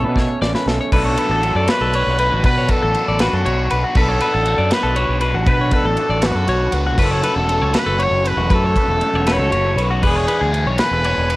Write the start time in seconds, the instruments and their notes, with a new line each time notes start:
Already playing: clean electric guitar B2 F#3 A3 C#4, trumpet A4
0.03 fingered electric bass B2, clean electric guitar B4
0.16 clean electric guitar C#4 C#5, kick, snare
0.41 fingered electric bass A1, clean electric guitar C#4 D5, snare
0.55 clean electric guitar B4, snare
0.66 fingered electric bass B1, clean electric guitar A3 A4, snare
0.81 clean electric guitar C#5
0.92 fingered electric bass B1, overdriven electric guitar F#3 B3 D4 F#4, trumpet A4, clean electric guitar B4, kick, crash
1.05 clean electric guitar C#5
1.17 overdriven electric guitar F#3 B3 D4 F#4, clean electric guitar B4, ride
1.29 fingered electric bass A1, clean electric guitar A4
1.42 overdriven electric guitar F#3 B3 D4 F#4, ride
1.55 fingered electric bass F#2, clean electric guitar D5
1.67 overdriven electric guitar F#3 B3 D4 F#4, clean electric guitar B4, trumpet B4, snare, ride
1.81 fingered electric bass B1, clean electric guitar A4
1.93 overdriven electric guitar F#3 B3 D4 F#4, clean electric guitar C#5, ride
2.07 fingered electric bass B1
2.19 overdriven electric guitar F#3 B3 D4 F#4, clean electric guitar B4, ride
2.32 fingered electric bass A1, clean electric guitar F#4
2.44 fingered electric bass B2, overdriven electric guitar F#3 B3 D4 F#4, trumpet B4, clean electric guitar B4, kick, ride
2.58 clean electric guitar C#5
2.69 overdriven electric guitar F#3 B3 D4 F#4, trumpet A4, clean electric guitar B4, kick, ride
2.83 fingered electric bass A1, clean electric guitar A4
2.94 overdriven electric guitar F#3 B3 D4 F#4, ride
3.08 fingered electric bass A1, clean electric guitar D5
3.19 overdriven electric guitar F#3 B3 D4 F#4, trumpet F#4, clean electric guitar B4, snare, ride
3.33 fingered electric bass F#2, clean electric guitar A4
3.45 fingered electric bass B1, overdriven electric guitar F#3 B3 D4 F#4, clean electric guitar C#5, ride
3.70 fingered electric bass B1, overdriven electric guitar F#3 B3 D4 F#4, clean electric guitar B4, ride
3.84 clean electric guitar F#4
3.95 fingered electric bass B1, overdriven electric guitar F#3 B3 D4 F#4, trumpet A4, clean electric guitar B4, kick, crash
4.09 clean electric guitar C#5
4.20 overdriven electric guitar F#3 B3 D4 F#4, clean electric guitar B4, ride
4.34 fingered electric bass A1, clean electric guitar A4
4.45 overdriven electric guitar F#3 B3 D4 F#4, ride
4.58 fingered electric bass F#2, clean electric guitar D5
4.70 overdriven electric guitar F#3 B3 D4 F#4, clean electric guitar B4, trumpet B4, snare, ride
4.83 fingered electric bass B1, clean electric guitar A4
4.95 overdriven electric guitar F#3 B3 D4 F#4, clean electric guitar C#5, ride
5.09 fingered electric bass B1
5.21 overdriven electric guitar F#3 B3 D4 F#4, clean electric guitar B4, ride
5.34 fingered electric bass A1, clean electric guitar F#4
5.46 fingered electric bass B2, overdriven electric guitar F#3 B3 D4 F#4, clean electric guitar B4, trumpet B4, kick, ride
5.61 clean electric guitar C#5
5.71 overdriven electric guitar F#3 B3 D4 F#4, trumpet A4, clean electric guitar B4, kick, ride
5.84 fingered electric bass A1, clean electric guitar A4
5.97 overdriven electric guitar F#3 B3 D4 F#4, ride
6.09 fingered electric bass A1, clean electric guitar D5
6.21 overdriven electric guitar F#3 B3 D4 F#4, clean electric guitar B4, snare, ride
6.26 trumpet F#4
6.35 fingered electric bass F#2, clean electric guitar A4
6.47 fingered electric bass B1, overdriven electric guitar F#3 B3 D4 F#4, clean electric guitar C#5, ride
6.72 fingered electric bass C#2, overdriven electric guitar F#3 B3 D4 F#4, clean electric guitar B4, ride
6.87 clean electric guitar F#4
6.97 fingered electric bass F#1, overdriven electric guitar F#3 A3 C#4 F#4, trumpet A4, clean electric guitar B4, kick, crash
7.11 clean electric guitar C#5
7.23 overdriven electric guitar F#3 A3 C#4 F#4, clean electric guitar B4, ride
7.36 fingered electric bass E1, clean electric guitar A4
7.48 overdriven electric guitar F#3 A3 C#4 F#4, ride
7.62 fingered electric bass C#2, clean electric guitar C#5
7.73 overdriven electric guitar F#3 A3 C#4 F#4, clean electric guitar B4, snare, ride
7.79 trumpet B4
7.86 fingered electric bass F#1, clean electric guitar A4
7.98 overdriven electric guitar F#3 A3 C#4 F#4, clean electric guitar C#5, ride
8.03 trumpet C#5
8.11 fingered electric bass F#1
8.24 overdriven electric guitar F#3 A3 C#4 F#4, clean electric guitar B4, trumpet B4, ride
8.37 fingered electric bass E1, clean electric guitar F#4
8.49 fingered electric bass F#2, overdriven electric guitar F#3 A3 C#4 F#4, clean electric guitar B4, kick, ride
8.53 trumpet A4
8.64 clean electric guitar C#5
8.76 overdriven electric guitar F#3 A3 C#4 F#4, clean electric guitar B4, kick, ride
8.88 fingered electric bass E1, clean electric guitar A4
9.01 overdriven electric guitar F#3 A3 C#4 F#4, ride
9.13 fingered electric bass E1, clean electric guitar C#5
9.26 overdriven electric guitar F#3 A3 C#4 F#4, clean electric guitar B4, snare, ride
9.32 trumpet C#5
9.38 fingered electric bass C#2, clean electric guitar A4
9.51 fingered electric bass F#1, overdriven electric guitar F#3 A3 C#4 F#4, clean electric guitar C#5, ride
9.76 fingered electric bass B1, overdriven electric guitar F#3 A3 C#4 F#4, clean electric guitar B4, ride
9.91 clean electric guitar F#4
10.02 fingered electric bass E1, overdriven electric guitar E3 B3 D4 G#4, clean electric guitar B4, kick, crash
10.07 trumpet G#4
10.16 clean electric guitar C#5
10.27 overdriven electric guitar E3 B3 D4 G#4, clean electric guitar B4, ride
10.41 fingered electric bass D2, clean electric guitar G#4
10.52 overdriven electric guitar E3 B3 D4 G#4, ride
10.66 fingered electric bass B1, clean electric guitar C#5
10.78 overdriven electric guitar E3 B3 D4 G#4, trumpet B4, clean electric guitar B4, snare, ride
10.91 fingered electric bass E1, clean electric guitar A4
11.04 overdriven electric guitar E3 B3 D4 G#4, clean electric guitar C#5, ride
11.17 fingered electric bass E1
11.30 overdriven electric guitar E3 B3 D4 G#4, clean electric guitar B4, ride